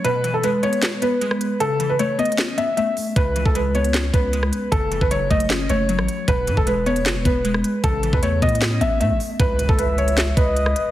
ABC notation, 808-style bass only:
X:1
M:4/4
L:1/16
Q:1/4=154
K:C#m
V:1 name="808-style bass" clef=bass
z16 | z16 | C,,3 C,,6- C,, C,,4 z2 | F,,,3 F,,,3 F,,,4 F,,,3 A,,, z2 |
E,,,2 G,, E,,,4- E,,, F,,, E,,, E,,,4 z2 | A,,,3 E,,3 A,,4 A,,,2 A,, A,,, z2 | C,,3 C,,6- C,, C,,4 z2 |]